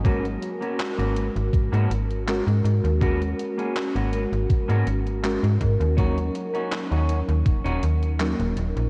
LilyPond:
<<
  \new Staff \with { instrumentName = "Clean electric guitar" } { \time 4/4 \key gis \minor \tempo 4 = 81 <ais b cis' fis'>16 r8 <ais b cis' fis'>16 r16 <ais b cis' fis'>16 r8. <ais b cis' fis'>16 r4. | <ais b cis' fis'>16 r8 <ais b cis' gis'>16 r16 <ais b cis' fis'>16 r8. <ais b cis' fis'>16 r4. | <cis' dis' fis'>16 r8 <cis' dis' fis'>16 r16 <cis' dis' fis'>16 r8. <cis' dis' fis'>16 r4. | }
  \new Staff \with { instrumentName = "FM electric piano" } { \time 4/4 \key gis \minor <gis cis' fis' ais'>2. <gis cis' fis' ais'>4 | <gis cis' fis' ais'>2. <gis cis' fis' ais'>4 | <fis ais cis' dis' ais'>2. <fis ais cis' dis' ais'>4 | }
  \new Staff \with { instrumentName = "FM bass" } { \clef bass \time 4/4 \key gis \minor gis,,8 r8. gis,,8 gis,,16 gis,16 gis,16 gis,,8. gis,16 gis,16 dis,16~ | dis,8 r8. gis,,8 gis,,16 r16 gis,16 gis,,8. gis,16 gis,16 dis,16~ | dis,8 r8. dis,8 dis,16 dis,,16 dis,,16 dis,8. dis,,16 dis,,16 ais,,16 | }
  \new DrumStaff \with { instrumentName = "Drums" } \drummode { \time 4/4 <hh bd>16 hh16 hh16 hh16 <hc hh>16 hh16 hh16 hh16 <hh bd>16 hh16 hh16 hh16 <hc hh>16 hh16 hh16 hh16 | <hh bd>16 hh16 hh16 hh16 <hc hh>16 hh16 hh16 hh16 <hh bd>16 hh16 hh16 hh16 <hc hh>16 hh16 <hh bd>16 hh16 | <hh bd>16 hh16 hh16 hh16 <hc hh>16 hh16 hh16 hh16 <hh bd>16 hh16 hh16 hh16 <hc hh>16 hh16 hh16 hh16 | }
>>